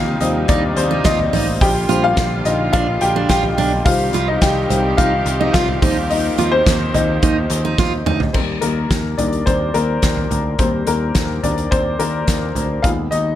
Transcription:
Already playing: picked electric bass D#2, string section C3 G3 A#3 D#4, upright piano F4 G4 F5 G5
0.20 picked electric bass D#2, upright piano F3 G3 C4 D#4 D#5, hi-hat pedal, open hi-hat
0.48 picked electric bass D#2, upright piano D4 D5, steel-string acoustic guitar D#4, kick, hi-hat pedal, open hi-hat
0.77 picked electric bass D#2, upright piano C4 C5, hi-hat pedal, open hi-hat
0.91 steel-string acoustic guitar D#4
1.04 picked electric bass D#2, upright piano D#4 D#5, steel-string acoustic guitar F4, kick, snare, hi-hat pedal, open hi-hat
1.19 floor tom
1.33 picked electric bass A1, steel-string acoustic guitar D#4, floor tom, hi-hat pedal, open hi-hat
1.61 picked electric bass A#1, string section D3 G3 F4, upright piano G4 G5, kick, hi-hat pedal, open hi-hat
1.89 picked electric bass A#1, upright piano D3 G3 C4, steel-string acoustic guitar F4, hi-hat pedal, open hi-hat
2.04 upright piano F4 F5
2.17 picked electric bass A#1, kick, snare, hi-hat pedal, open hi-hat
2.45 picked electric bass A#1, upright piano D#4 D#5, hi-hat pedal, open hi-hat
2.73 picked electric bass A#1, steel-string acoustic guitar D4, upright piano F4 F5, kick, hi-hat pedal, open hi-hat
3.01 picked electric bass A#1, upright piano G4 G5, hi-hat pedal, open hi-hat
3.16 steel-string acoustic guitar D4
3.29 picked electric bass A#1, steel-string acoustic guitar F4, upright piano G4 G5, kick, snare, hi-hat pedal, open hi-hat
3.44 floor tom
3.58 picked electric bass B1, steel-string acoustic guitar D4, floor tom, hi-hat pedal, open hi-hat
3.85 picked electric bass C2, string section D#3 C4 G4, upright piano D#3 G3 C4 F4 F5, kick, hi-hat pedal, open hi-hat
4.13 picked electric bass C2, steel-string acoustic guitar F4, hi-hat pedal, open hi-hat
4.28 upright piano D#4 D#5
4.41 picked electric bass C2, upright piano G4 G5, kick, snare, hi-hat pedal, open hi-hat
4.69 picked electric bass C2, upright piano D#3 G3 C4, floor tom, hi-hat pedal, open hi-hat
4.97 picked electric bass C2, steel-string acoustic guitar D#4, upright piano F4 F5, kick, hi-hat pedal, open hi-hat
5.26 picked electric bass C2, hi-hat pedal, open hi-hat
5.40 steel-string acoustic guitar D#4, upright piano D#4 D#5
5.53 picked electric bass C2, steel-string acoustic guitar F4, upright piano F4 F5, kick, snare, hi-hat pedal, open hi-hat
5.68 floor tom
5.81 picked electric bass D#2, string section D#3 A#3, upright piano F3 G3 C4, steel-string acoustic guitar D#4, kick, floor tom, hi-hat pedal, open hi-hat
6.10 upright piano D#4 D#5, hi-hat pedal, open hi-hat
6.38 picked electric bass D#2, steel-string acoustic guitar F4, hi-hat pedal, open hi-hat
6.52 upright piano C4 C5
6.66 picked electric bass D#2, kick, snare, hi-hat pedal, open hi-hat
6.94 picked electric bass D#2, upright piano D#4 D#5, floor tom, hi-hat pedal, open hi-hat
7.22 picked electric bass D#2, steel-string acoustic guitar D#4, kick, hi-hat pedal, open hi-hat
7.50 picked electric bass D#2, hi-hat pedal, open hi-hat
7.65 steel-string acoustic guitar D#4
7.78 picked electric bass D#2, steel-string acoustic guitar F4, kick, snare
8.06 picked electric bass D2, steel-string acoustic guitar D#4, mid tom
8.20 floor tom
8.33 picked electric bass D#2, upright piano D#3 G3 A#3 C4 C5, kick, crash
8.61 picked electric bass D#2, upright piano A#3 A#4, closed hi-hat
8.90 picked electric bass D#2, kick, snare, closed hi-hat
9.18 picked electric bass D#2, upright piano D#3 G3 A#3 D4 D5, closed hi-hat, floor tom
9.33 closed hi-hat
9.46 picked electric bass D#2, upright piano C4 C5, kick, closed hi-hat
9.74 picked electric bass D#2, upright piano A#3 A#4, closed hi-hat
10.02 picked electric bass D#2, kick, snare, closed hi-hat
10.17 floor tom
10.31 picked electric bass D2, closed hi-hat, floor tom
10.59 picked electric bass D#2, upright piano D#3 G3 A#3 C4 C5, kick, closed hi-hat
10.87 picked electric bass D#2, upright piano A#3 A#4, closed hi-hat
11.15 picked electric bass D#2, kick, snare, closed hi-hat
11.43 picked electric bass D#2, upright piano D4 D5, closed hi-hat, floor tom
11.58 closed hi-hat
11.71 picked electric bass D#2, upright piano C4 C5, kick, closed hi-hat
11.99 picked electric bass D#2, upright piano A#3 A#4, closed hi-hat
12.27 picked electric bass D#2, kick, snare, closed hi-hat
12.55 picked electric bass D2, closed hi-hat, floor tom
12.82 picked electric bass D#2, upright piano D#3 G#3 B3 F4 F5, kick, closed hi-hat
13.11 picked electric bass D#2, upright piano D#4 D#5, closed hi-hat

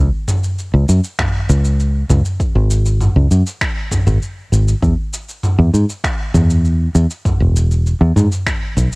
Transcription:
0.28 mid tom, shaker
0.43 shaker
0.59 shaker
0.74 fingered electric bass C#2
0.89 fingered electric bass F#2, shaker
1.04 shaker
1.19 finger snap, kick, mid tom, shaker
1.49 fingered electric bass C#2, shaker
1.65 shaker
1.80 shaker
2.10 fingered electric bass C#2, mid tom, shaker
2.25 shaker
2.40 kick, shaker
2.55 fingered electric bass G#1
2.70 shaker
2.86 shaker
3.01 mid tom, shaker
3.16 fingered electric bass C#2
3.31 fingered electric bass F#2, shaker
3.46 shaker
3.61 finger snap, kick, shaker
3.91 kick, mid tom, shaker
4.07 fingered electric bass G#1, shaker
4.22 shaker
4.52 fingered electric bass G#1, shaker
4.68 shaker
4.82 fingered electric bass E2, kick, shaker
5.13 shaker
5.29 shaker
5.43 mid tom, shaker
5.59 fingered electric bass E2
5.74 fingered electric bass G#2, shaker
5.89 shaker
6.04 finger snap, kick, shaker
6.34 fingered electric bass E2, mid tom, shaker
6.50 shaker
6.65 shaker
6.95 fingered electric bass E2, shaker
7.10 shaker
7.25 kick, mid tom, shaker
7.40 fingered electric bass E1
7.56 shaker
7.71 shaker
7.86 shaker
8.01 fingered electric bass E2
8.16 fingered electric bass G#2, mid tom, shaker
8.32 shaker
8.46 finger snap, kick, shaker
8.77 fingered electric bass B1, kick, shaker
8.92 shaker

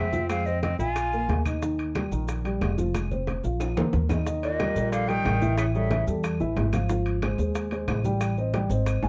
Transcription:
Already playing: upright bass F2, tenor saxophone C4, flute E5
0.12 upright piano F3 F4, high bongo, high conga, maracas
0.29 upright piano G#3 G#4, tenor saxophone C4, flute F5, high bongo, high conga, high timbale, claves, maracas
0.46 tenor saxophone C4, upright piano C4 C5, flute D#5, high conga, maracas
0.62 tenor saxophone C4, flute D#5, high bongo, high conga, high timbale, low timbale, maracas
0.79 upright bass A#1, upright piano F4 F5, tenor saxophone F4, flute G#5, high bongo, high conga, maracas
0.96 high bongo, high conga, high timbale, claves, maracas
1.12 upright piano A#3 A#4, high bongo, high conga, maracas
1.28 upright bass D#2, high bongo, low bongo, high conga, high timbale, low timbale, maracas
1.45 upright piano D#4 D#5, high bongo, high conga, high timbale, claves, maracas
1.62 upright piano D#3 D#4, high bongo, high conga, maracas
1.79 high conga, high timbale, maracas
1.95 upright piano G3 G4, high bongo, high conga, high timbale, low timbale, claves, maracas
2.11 upright bass A#1, upright piano D#3 D#4, high bongo, high conga, maracas
2.28 high bongo, high conga, high timbale, maracas
2.44 upright piano G3 G4, high bongo, high conga, high timbale, maracas
2.61 upright bass F1, high bongo, low bongo, high conga, high timbale, low timbale, claves, maracas
2.78 upright piano F3 F4, high bongo, high conga, maracas
2.94 upright piano G#3 G#4, high bongo, high conga, high timbale, claves, maracas
3.11 upright piano C4 C5, high conga, maracas
3.27 high bongo, high conga, high timbale, low timbale, maracas
3.44 upright bass A#1, upright piano F4 F5, high bongo, maracas
3.60 high bongo, high timbale, claves, maracas
3.77 upright bass D2, upright piano A#3 A#4, low conga, high timbale, maracas
3.93 upright bass D#2, low bongo, low conga, maracas
4.09 upright piano D#4 D#5, low bongo, low conga, low timbale, claves, maracas
4.26 upright piano D#3 D#4 D#5, high bongo, high conga, maracas
4.43 tenor saxophone A#2, flute D#5, high conga, high timbale, maracas
4.60 upright piano G3 G4 A#4, high bongo, high conga, high timbale, low timbale, claves, maracas
4.76 upright bass A#1, upright piano G3 G4 A#4, high bongo, high conga, maracas
4.92 tenor saxophone D3, flute F5, high bongo, high conga, high timbale, maracas
5.08 tenor saxophone D#3, upright piano G3 G4 A#4, flute G5, high bongo, high conga, high timbale, maracas
5.25 upright bass A1, high bongo, low bongo, high conga, high timbale, low timbale, claves, maracas
5.42 upright piano E3 E4 E5, high bongo, high conga, maracas
5.58 tenor saxophone C#3, flute E5, high bongo, high conga, high timbale, claves, maracas
5.74 tenor saxophone C#3, upright piano G3 G4 A4, flute E5, high conga, maracas
5.91 upright piano E3 E4 E5, high bongo, high conga, high timbale, low timbale, maracas
6.07 upright bass E2, upright piano G3 G4 A4, high bongo, high conga, maracas
6.24 high bongo, high conga, high timbale, claves, maracas
6.40 upright bass A1, upright piano E3 E4 E5, high bongo, high conga, maracas
6.56 upright bass G#1, high bongo, low bongo, high conga, high timbale, low timbale, maracas
6.73 upright piano F3 F4 F5, high bongo, high conga, high timbale, claves, maracas
6.89 upright piano F3 F4 F5, high bongo, high conga, maracas
7.06 high conga, high timbale, maracas
7.22 upright piano G#3 G#4 C5, high bongo, high conga, high timbale, low timbale, claves, maracas
7.38 upright bass D#2, upright piano G#3 G#4 C5, high bongo, high conga, maracas
7.55 high bongo, high conga, high timbale, maracas
7.71 upright piano G#3 G#4 C5, high bongo, high conga, high timbale, maracas
7.88 upright bass A1, high bongo, low bongo, high conga, high timbale, low timbale, claves, maracas
8.04 upright piano G3 G4 G5, high bongo, high conga, maracas
8.21 high bongo, high conga, high timbale, claves, maracas
8.38 upright piano C4 C5 D#5, high conga, maracas
8.54 upright piano G3 G4 G5, high bongo, high conga, high timbale, low timbale, maracas
8.69 upright bass G#1, upright piano C4 C5 D#5, high bongo, maracas
8.86 high bongo, high conga, high timbale, claves, maracas
9.03 upright bass G#1, upright piano G#3 G#4 G#5, high bongo, high conga, high timbale, maracas

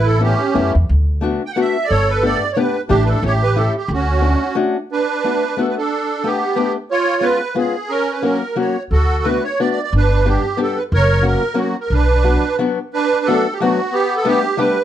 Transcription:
Already playing: upright bass A1, accordion E4
0.06 accordion A4
0.19 steel-string acoustic guitar A3 B3 C#4 E4, accordion G4
0.25 accordion C#4
0.54 upright bass F#2, steel-string acoustic guitar A3 B3 C#4 E4
0.75 upright bass E2
0.89 upright bass D2
1.21 steel-string acoustic guitar A3 B3 D4 F#4
1.46 accordion G5
1.52 accordion F#5
1.56 steel-string acoustic guitar A3 B3 D4 F#4
1.61 accordion E5
1.84 accordion D5
1.89 upright bass G1, accordion A4 C#5
2.10 accordion B4
2.22 steel-string acoustic guitar A3 B3 D4 G4, accordion D5
2.52 steel-string acoustic guitar A3, accordion C#5
2.57 steel-string acoustic guitar B3 D4 G4, accordion B4
2.88 upright bass A1, steel-string acoustic guitar A3 D4 E4 G4, accordion D4 G4
3.06 accordion A4 B4
3.23 upright bass A1, steel-string acoustic guitar A3 C#4 E4 G4, accordion C#5
3.27 accordion G4
3.43 accordion B4
3.56 steel-string acoustic guitar A3 C#4 E4 G4, accordion A4
3.77 accordion G4
3.88 upright bass D2
3.93 accordion C#4 F#4
4.21 steel-string acoustic guitar A3 C#4 D4 F#4
4.55 steel-string acoustic guitar A3 C#4 D4 F#4
4.92 accordion D4 B4
5.24 steel-string acoustic guitar A3 B3 D4 F#4
5.57 steel-string acoustic guitar A3 B3 D4 F#4, accordion A4
5.68 accordion B4
5.77 accordion D4 A4
6.24 steel-string acoustic guitar A3 B3 D4 G4, accordion B3 G4
6.56 steel-string acoustic guitar A3 B3 D4 G4
6.91 accordion F4 C#5
7.21 steel-string acoustic guitar G#3 B3 C#4 F4, accordion B4
7.55 steel-string acoustic guitar G#3 B3 C#4 F4, accordion G#4
7.89 accordion C#4 A#4
8.12 accordion B4
8.22 steel-string acoustic guitar F#3 A#3 C#4 F#4, accordion A#4
8.56 steel-string acoustic guitar F#3 A#3 C#4 F#4, accordion C#5
8.91 upright bass D2, accordion F#4 A4
9.23 steel-string acoustic guitar A3 B3 D4 F#4, accordion B4
9.44 accordion C#5
9.60 steel-string acoustic guitar A3 B3 D4 F#4, accordion D5
9.71 accordion D5
9.83 accordion D5
9.93 upright bass G1, accordion D4
9.97 accordion B4
10.25 steel-string acoustic guitar G3 B3 D4 G4, accordion G4
10.57 steel-string acoustic guitar G3 B3 D4 G4
10.62 accordion A4
10.77 accordion B4
10.92 upright bass F#1, accordion A#4 C#5
11.22 steel-string acoustic guitar F#3 A#3 C#4 F#4
11.26 accordion A#4
11.54 steel-string acoustic guitar F#3 A#3 C#4 F#4
11.58 accordion F#4
11.80 accordion A#4
11.90 upright bass B1, accordion D4 B4
12.24 steel-string acoustic guitar F#3 B3 D4 F#4
12.59 steel-string acoustic guitar F#3 B3 D4 F#4
12.93 accordion D4 B4
13.25 steel-string acoustic guitar F#3 A3 B3 D4 F#4, accordion A4
13.52 accordion G4
13.60 steel-string acoustic guitar F#3 A3 B3 D4 F#4, accordion F#4
13.92 accordion B3 G4
14.17 accordion A4
14.25 steel-string acoustic guitar G3 A3 B3 D4 G4, accordion G4
14.57 steel-string acoustic guitar G3 A3 B3 D4 G4, accordion B4

